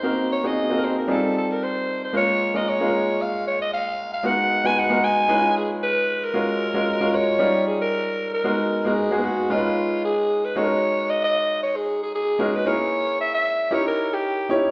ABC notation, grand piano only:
X:1
M:4/4
L:1/16
Q:"Swing 16ths" 1/4=114
K:F#
V:1 name="Grand piano"
[_B,=C_E_G_B]2 z [B,CEG^G] z [B,CE_G=AB]3 [=G,CE=F^GA]6 z2 | [G,A,CEA]2 z [G,A,CEA] z [G,A,CEGA]6 z4 z | [G,B,DFA]2 z [G,B,DFB] z [G,B,DFA]3 [G,CD=E^EB]6 z2 | [G,CEFA]2 z [G,CEFA] z [G,CEFA]3 [=G,CDEA]6 z2 |
[G,B,DFA]2 z [G,B,DFA] z [G,A,B,DFG]3 [G,CDEAB]6 z2 | [G,CDF=A^A]6 z8 [G,CDFA] z | [A,C=EGA]6 z2 [CDE=GA]4- [CDEGA] z [CDEGc] z |]